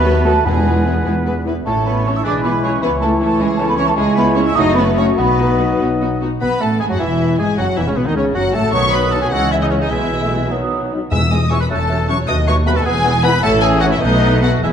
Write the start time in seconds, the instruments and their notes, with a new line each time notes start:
Already playing: double bass section D#2, bassoon A3, cello section B3, clarinet F#4, violin section B4, oboe B4, flute section B5
0.05 viola section F#3 B3, violin section A4
0.25 viola section F#3 B3, cello section A3, french horn section A3 F#4, violin section A4, flute section A5
0.45 double bass section E2, timpani E2, viola section E3 B3, cello section G#3, bassoon B3, clarinet E4, violin section G#4 B4, oboe B4, flute section G#5
0.66 viola section E3 B3, violin section B4
0.85 viola section E3 B3, french horn section B3 E4, violin section B4
1.05 double bass section E2, viola section E3 B3, violin section B4
1.26 viola section E3 B3, violin section B4
1.46 viola section E3 B3, french horn section B3 E4, violin section B4
1.66 double bass section A1, viola section E3 C#4, bassoon A3, cello section A3, french horn section C#4 E4, clarinet E4, violin section A4, oboe C#5, flute section A5
1.86 viola section E3 C#4, cello section B3, violin section A4 B4, flute section B5
2.05 viola section E3 C#4, cello section C#4, violin section A4 C#5, flute section C#6
2.15 cello section E4, violin section E5, flute section E6
2.24 double bass section B1, viola section E3 E4, french horn section G#3, bassoon G#3, cello section D4, violin section G#4 D5, oboe B4, flute section D6
2.43 viola section E3 E4, cello section B3, violin section G#4 B4, flute section B5
2.63 viola section E3 E4, cello section C#4, violin section G#4 C#5, flute section C#6
2.81 double bass section C#2, french horn section E3, bassoon E3, viola section E3 C#4, cello section B3, violin section E4 B4, oboe C#5, flute section B5
3.01 viola section E3 C#4, cello section A3, violin section E4 A4, flute section A5
3.20 viola section E3 C#4, cello section A3, violin section E4 A4, flute section A5
3.38 double bass section C#2, viola section E3 C#4, cello section G#3, violin section E4 G#4, flute section G#5
3.58 viola section E3 C#4, cello section A3, violin section E4 A4, flute section A5
3.67 cello section B3, violin section B4, flute section B5
3.77 viola section E3 C#4, cello section C#4, violin section E4 C#5, flute section C#6
3.86 cello section A3, violin section A4, flute section A5
3.96 double bass section C#2, bassoon G#3, french horn section G#3 E4, viola section G#3 C#4, cello section G#3, clarinet E4, violin section E4 G#4, flute section G#5
4.16 viola section G#3 C#4, cello section B3, violin section E4 B4, flute section B5
4.35 viola section G#3 C#4, cello section C#4, violin section E4 C#5, flute section C#6
4.46 cello section E4, violin section E5, flute section E6
4.55 double bass section F#1, bassoon A3, french horn section A3 F#4, viola section A3 C#4, cello section D#4, clarinet F#4, violin section F#4 D#5, flute section D#6
4.75 viola section A3 C#4, cello section B3, violin section F#4 B4, flute section B5
4.97 viola section A3 C#4, cello section C#4, violin section F#4 C#5, flute section C#6
5.17 double bass section B1, french horn section F#3 D#4, cello section B3, bassoon B3, viola section B3 D#4, violin section F#4 B4, oboe D#5, flute section B5
5.39 viola section B3 D#4, violin section F#4
5.59 viola section B3 D#4, violin section F#4
5.80 double bass section B1, viola section B3 D#4, violin section F#4
6.01 viola section B3 D#4, violin section F#4
6.21 viola section B3 D#4, violin section F#4
6.41 double bass section B1, cello section B2, french horn section B3, bassoon B3, viola section B3, violin section B4 B5, oboe B4, clarinet B4, flute section B5
6.61 double bass section A1, cello section A2, bassoon A3, viola section A3, french horn section A3, oboe A4, violin section A4 A5, clarinet A4, flute section A5
6.80 double bass section G#1, cello section G#2, bassoon G#3, viola section G#3, french horn section G#3, oboe G#4, violin section G#4 G#5, clarinet G#4, flute section G#5
6.90 cello section F#2, bassoon F#3, viola section F#3, french horn section F#3, oboe F#4, violin section F#4 F#5, clarinet F#4, flute section F#5
6.99 double bass section E1, cello section E2, bassoon E3, viola section E3, french horn section E3, oboe E4, violin section E4 E5, clarinet E4, flute section E5
7.38 double bass section G#1, cello section G#2, bassoon G#3, viola section G#3, french horn section G#3, violin section G#4 G#5, oboe G#4, clarinet G#4
7.58 double bass section F#1, cello section F#2, bassoon F#3, viola section F#3, french horn section F#3, oboe F#4, violin section F#4 F#5, clarinet F#4, flute section F#5
7.76 double bass section E1, cello section E2, bassoon E3, french horn section E3, viola section E3, oboe E4, violin section E4 E5, clarinet E4, flute section E5
7.87 cello section C#2, bassoon C#3, viola section C#3, french horn section C#3, oboe C#4, violin section C#4 C#5, clarinet C#4, flute section C#5
7.96 double bass section B1, bassoon B2, cello section B2, french horn section B2, oboe B3, violin section B3 B4, viola section B3, clarinet B3, flute section B4
8.06 cello section D#2, bassoon D#3, viola section D#3, french horn section D#3, oboe D#4, violin section D#4 D#5, clarinet D#4, flute section D#5
8.16 cello section C#2, double bass section C#2, bassoon C#3, viola section C#3, french horn section C#3, violin section C#4 C#5, clarinet C#4, oboe C#4, flute section C#5
8.34 double bass section F#1, cello section F#2, bassoon F#3, viola section F#3, french horn section F#3, oboe F#4, violin section F#4 F#5, clarinet F#4, flute section F#5
8.54 double bass section A1, cello section A2, bassoon A3, viola section A3, french horn section A3, oboe A4, violin section A4 A5, clarinet A4, flute section A5
8.73 double bass section B1, cello section B2, timpani B2, viola section D#3 B3, bassoon F#3, clarinet B4, violin section C#5 C#6, oboe C#5, flute section D#6
8.92 violin section B4 B5, oboe B4
9.12 french horn section F#3 D#4, oboe A4, violin section A4 A5
9.22 violin section G#4 G#5, oboe G#4
9.31 double bass section C#2, cello section C#3, viola section E3 G#3, bassoon G#3, violin section F#4 F#5, oboe F#4, clarinet C#5, flute section E6
9.51 violin section E4 E5, oboe E4
9.61 violin section D#4 D#5, oboe D#4
9.71 french horn section G#3 E4, oboe C#4, violin section C#4 C#5
9.81 oboe D#4, violin section D#4 D#5
9.90 double bass section B1, cello section B2, viola section E3 G#3, bassoon G#3, oboe E4, violin section E4 E5, clarinet B4
10.21 viola section A3
10.32 french horn section G#3 E4
10.51 viola section D#3 B3, bassoon F#3, clarinet B4, flute section D#6
10.93 french horn section F#3 D#4
11.11 double bass section E1, cello section E2, timpani E2, bassoon G#3, viola section G#3 B3, clarinet B4, oboe E5, violin section E5 E6, flute section E6
11.31 bassoon G#3, viola section G#3 B3, clarinet B4, violin section D#5 D#6, oboe D#5, flute section E6
11.50 bassoon G#3, french horn section G#3 E4, viola section G#3 B3, clarinet B4, oboe C#5, violin section C#5 C#6, flute section E6
11.60 oboe B4, violin section B4 B5
11.70 double bass section E1, cello section E2, viola section F#3 C#4, bassoon A3, oboe A4, violin section A4 A5, clarinet C#5, flute section F#6
11.89 viola section F#3 C#4, bassoon A3, clarinet C#5, flute section F#6
12.08 french horn section F#3 C#4, viola section F#3 C#4, bassoon A3, clarinet C#5, oboe C#5, violin section C#5 C#6, flute section F#6
12.27 double bass section D#2, cello section D#2, viola section F#3 B3, bassoon A3, clarinet B4, violin section D#5 D#6, oboe D#5, flute section F#6
12.47 viola section F#3 B3, bassoon A3, clarinet B4, oboe C#5, violin section C#5 C#6, flute section F#6
12.66 french horn section F#3 B3, viola section F#3 B3, bassoon A3, clarinet B4, oboe B4, violin section B4 B5, flute section F#6
12.76 oboe A4, violin section A4 A5
12.85 double bass section E1, cello section E2, viola section E3 B3, bassoon B3, oboe G#4, violin section G#4 G#5, clarinet B4, flute section E6
13.04 viola section E3 B3, bassoon B3, clarinet B4, flute section E6
13.23 french horn section E3 B3, viola section E3 B3, bassoon B3, violin section B4 B5, oboe B4, clarinet B4, flute section E6
13.42 double bass section A1, cello section A2, viola section E3 C#4, bassoon A3, violin section A4 A5, oboe A4, clarinet C#5, flute section E6
13.62 oboe G#4, violin section G#4 G#5
13.80 french horn section E3 C#4, oboe F#4, violin section F#4 F#5
13.91 oboe E4, violin section E4 E5
14.01 double bass section B1, cello section B2, bassoon A3, viola section A3 B3, oboe D#4, violin section D#4 D#5, clarinet B4, flute section F#6
14.42 french horn section A3 B3, oboe F#4, violin section F#4 F#5
14.63 double bass section E1, cello section E2, timpani E2, viola section G#3 B3, bassoon G#3, oboe E4, violin section E4 E5, clarinet B4, flute section E6